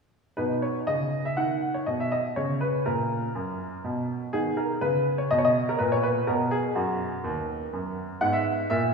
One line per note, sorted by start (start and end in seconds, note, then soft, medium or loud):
0.37 0.78 B2 soft
0.37 2.33 D#4 soft
0.37 0.52 B4 soft
0.62 0.78 C#5 soft
0.87 1.28 C#3 soft
0.87 1.25 D#5 medium
1.25 1.38 E5 medium
1.37 1.77 D#3 soft
1.37 1.74 F#5 medium
1.74 1.87 C#5 soft
1.86 2.27 B2 soft
1.86 1.99 D#5 soft
2.00 2.13 E5 medium
2.12 2.37 D#5 medium
2.36 2.77 C#3 soft
2.36 4.29 C#4 soft
2.36 2.62 C#5 medium
2.61 2.86 B4 soft
2.86 3.26 A#2 soft
2.86 4.05 A#4 medium
3.35 3.75 F#2 soft
3.84 4.23 B2 soft
4.33 4.72 D#3 soft
4.33 6.24 B3 soft
4.33 4.57 G#4 medium
4.57 4.72 A#4 soft
4.81 5.21 C#3 soft
4.81 5.03 B4 medium
5.18 5.31 C#5 medium
5.31 5.70 B2 medium
5.31 5.38 D#5 medium
5.38 5.45 C#5 medium
5.45 5.58 D#5 medium
5.69 5.80 A#4 medium
5.79 6.18 A#2 soft
5.79 5.91 B4 medium
5.92 6.04 C#5 medium
6.03 6.25 B4 medium
6.27 6.67 B2 soft
6.27 8.18 B3 soft
6.27 6.49 A#4 medium
6.51 6.73 G#4 medium
6.75 7.14 F#2 medium
6.75 7.97 F#4 medium
7.24 7.63 D#2 medium
7.73 8.12 F#2 soft
8.21 8.61 G#2 soft
8.21 8.94 B3 soft
8.21 8.34 F#5 medium
8.33 8.67 E5 medium
8.70 8.94 A#2 medium
8.70 8.94 E5 medium